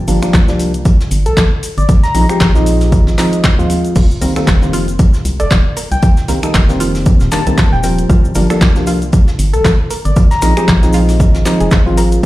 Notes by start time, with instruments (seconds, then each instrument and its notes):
0.07 fm bass G1, synth stab F3 G3 A#3 D4, open hi-hat, cabasa
0.22 synth stab F3 G3 A#3 D4, finger snap, closed hi-hat, cabasa
0.33 fm bass C2, kick, snare, clap, closed hi-hat, cabasa
0.48 synth stab F3 G3 A#3 D4, snare, cabasa
0.59 closed hi-hat, open hi-hat, cabasa
0.74 closed hi-hat, cabasa
0.85 kick, closed hi-hat, cabasa
1.00 snare, cabasa
1.11 fm bass G1, closed hi-hat, open hi-hat, cabasa
1.26 fm bass C2, soft synth lead A4, closed hi-hat, cabasa
1.37 fm bass A#1, kick, snare, clap, closed hi-hat, cabasa
1.63 closed hi-hat, open hi-hat, cabasa
1.78 fm bass G1, soft synth lead D5, closed hi-hat, cabasa
1.89 kick, closed hi-hat, cabasa
2.03 soft synth lead A#5, snare, closed hi-hat, cabasa
2.14 fm bass A#1, synth stab F3 G#3 C4 D#4, snare, closed hi-hat, open hi-hat, cabasa
2.29 synth stab F3 G#3 C4 G4, finger snap, closed hi-hat, cabasa
2.40 fm bass A#1, kick, snare, clap, closed hi-hat, cabasa
2.55 synth stab F3 G#3 C4 D#4, snare, cabasa
2.66 closed hi-hat, open hi-hat, cabasa
2.81 snare, open hi-hat, cabasa
2.92 kick, closed hi-hat, cabasa
3.07 fm bass G#1, snare, cabasa
3.18 synth stab F3 G#3 C4 D#4, snare, clap, closed hi-hat, open hi-hat, cabasa
3.33 closed hi-hat, cabasa
3.43 kick, snare, clap, closed hi-hat, cabasa
3.58 fm bass D#2, synth stab F3 G#3 C4 F4, closed hi-hat, cabasa
3.70 closed hi-hat, open hi-hat, cabasa
3.85 closed hi-hat, cabasa
3.95 fm bass F1, synth arpeggio sound F4, kick, closed hi-hat, crash, cabasa
4.11 cabasa
4.21 fm bass C2, synth stab D#3 G3 A#3 C4, synth arpeggio sound A#4, open hi-hat, cabasa
4.36 synth stab D#3 G3 A#3 C4, synth arpeggio sound A4, finger snap, closed hi-hat, cabasa
4.47 fm bass F1, kick, snare, clap, closed hi-hat, cabasa
4.62 synth stab D#3 G3 A#3 C4, snare, cabasa
4.73 synth arpeggio sound F4, closed hi-hat, open hi-hat, cabasa
4.88 closed hi-hat, cabasa
4.99 kick, closed hi-hat, cabasa
5.14 snare, cabasa
5.25 fm bass C2, closed hi-hat, open hi-hat, cabasa
5.40 fm bass F1, synth arpeggio sound A4, soft synth lead D5, closed hi-hat, cabasa
5.50 fm bass D#1, synth arpeggio sound F4, kick, snare, clap, closed hi-hat, cabasa
5.77 synth arpeggio sound A#4, closed hi-hat, open hi-hat, cabasa
5.91 fm bass C2, soft synth lead G5, closed hi-hat, cabasa
6.02 synth arpeggio sound F4, kick, closed hi-hat, cabasa
6.17 snare, cabasa
6.28 fm bass C2, synth stab D#3 G3 A#3 C4, synth arpeggio sound A#4, snare, closed hi-hat, open hi-hat, cabasa
6.43 synth stab D#3 G3 A#3 D#4, synth arpeggio sound A4, finger snap, closed hi-hat, cabasa
6.54 fm bass F1, kick, snare, clap, closed hi-hat, cabasa
6.69 synth stab D#3 G3 A#3 C4, snare, cabasa
6.80 synth arpeggio sound F4, closed hi-hat, open hi-hat, cabasa
6.95 snare, open hi-hat, cabasa
7.06 kick, closed hi-hat, cabasa
7.20 fm bass D#1, snare, cabasa
7.32 synth stab D#3 G3 A#3 D4, soft synth lead A5, snare, clap, closed hi-hat, open hi-hat, cabasa
7.46 fm bass C2, synth stab D#3 G3 A#3 C4, synth arpeggio sound A4, closed hi-hat, cabasa
7.57 synth arpeggio sound F4, kick, snare, clap, closed hi-hat, cabasa
7.73 fm bass D#1, soft synth lead G5, closed hi-hat
7.83 synth stab F3 G3 A#3 C4, synth arpeggio sound A#4, soft synth lead G5, closed hi-hat, open hi-hat, cabasa
7.99 closed hi-hat, cabasa
8.09 fm bass C2, synth arpeggio sound F4, kick, closed hi-hat, cabasa
8.25 cabasa
8.35 fm bass G1, synth stab F3 G3 A#3 D4, synth arpeggio sound A#4, open hi-hat, cabasa
8.50 synth stab F3 G3 A#3 D4, synth arpeggio sound A4, finger snap, closed hi-hat, cabasa
8.61 fm bass C2, kick, snare, clap, closed hi-hat, cabasa
8.75 synth stab F3 G3 A#3 D4, snare, cabasa
8.87 synth arpeggio sound F4, closed hi-hat, open hi-hat, cabasa
9.02 closed hi-hat, cabasa
9.12 kick, closed hi-hat, cabasa
9.28 snare, cabasa
9.38 fm bass G1, closed hi-hat, open hi-hat, cabasa
9.53 fm bass C2, soft synth lead A4, synth arpeggio sound A4, closed hi-hat, cabasa
9.65 fm bass A#1, synth arpeggio sound F4, kick, snare, clap, closed hi-hat, cabasa
9.90 synth arpeggio sound A#4, closed hi-hat, open hi-hat, cabasa
10.05 fm bass G1, soft synth lead D5, closed hi-hat, cabasa
10.16 synth arpeggio sound F4, kick, closed hi-hat, cabasa
10.31 soft synth lead A#5, snare, closed hi-hat, cabasa
10.42 fm bass A#1, synth stab F3 G#3 C4 D#4, synth arpeggio sound A#4, finger snap, snare, closed hi-hat, open hi-hat, cabasa
10.57 synth stab F3 G#3 C4 G4, synth arpeggio sound G#4, finger snap, closed hi-hat, cabasa
10.68 fm bass A#1, kick, snare, clap, closed hi-hat, cabasa
10.82 synth stab F3 G#3 C4 D#4, snare, closed hi-hat, cabasa
10.93 synth arpeggio sound F4, closed hi-hat, open hi-hat, cabasa
11.08 snare, open hi-hat, cabasa
11.20 kick, closed hi-hat, cabasa
11.34 fm bass G#1, snare, closed hi-hat, cabasa
11.45 synth stab F3 G#3 C4 D#4, snare, clap, closed hi-hat, open hi-hat, cabasa
11.60 fm bass F1, synth arpeggio sound G#4, closed hi-hat, cabasa
11.71 synth arpeggio sound F4, kick, snare, clap, closed hi-hat, cabasa
11.86 fm bass G#1, synth stab F3 G#3 C4 F4, closed hi-hat
11.97 synth arpeggio sound A#4, closed hi-hat, open hi-hat, cabasa
12.12 closed hi-hat, cabasa